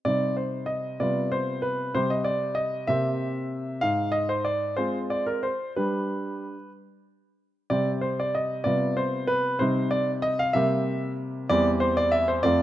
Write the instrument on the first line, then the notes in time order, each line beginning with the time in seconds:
grand piano
0.05 C3 G3 C4 D#4 D5
0.37 C5
0.66 D#5
1.00 C3 G3 B3 F4 D5
1.32 C5
1.62 B4
1.94 C3 G3 C4 G4 C5
2.10 D#5
2.24 D5
2.55 D#5
2.87 C3 A#3 C4 G4 E5
3.81 G#2 F5
4.12 D#5
4.29 C5
4.45 D5
4.77 G#3 C4 F4 C5
5.10 D5
5.26 A#4
5.43 C5
5.76 G3 D4 G4 B4
7.70 C3 G3 C4 G4 D5
8.01 C5
8.20 D5
8.35 D#5
8.64 C3 G3 B3 F4 D5
8.97 C5
9.27 B4
9.59 C3 G3 C4 D#4 C5
9.91 D5
10.22 D#5
10.39 F5
10.53 C3 G3 A#3 G4 E5
11.49 E2 G3 C4 G4 D5
11.80 C5
11.97 D5
12.12 E5
12.28 C5
12.43 F2 A3 C4 F4 D5